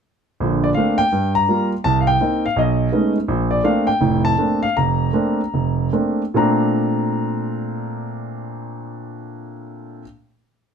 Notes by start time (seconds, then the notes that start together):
0.40 A#1 D3
0.64 D5
0.74 A3 A#3 C4 D4 F5
0.98 G5
1.12 G2
1.35 A#5
1.48 G3 A#3 F4
1.84 C2 A5
2.00 F5
2.07 G5
2.21 A#3 C4 D#4
2.46 F5
2.56 B1 D#5
2.92 G#3 A3 B3 C#4 D#4
3.28 A#1
3.51 D5
3.64 A3 A#3 C4 D4 F5
3.87 G5
4.01 F1 A2
4.25 A5
4.38 A3 A#3 C4 D4
4.63 F5
4.77 F1 A#5
5.13 A3 A#3 C4 D4
5.54 F1
5.93 A3 A#3 C4 D4
6.34 A#2 A3 C4 D4 A#5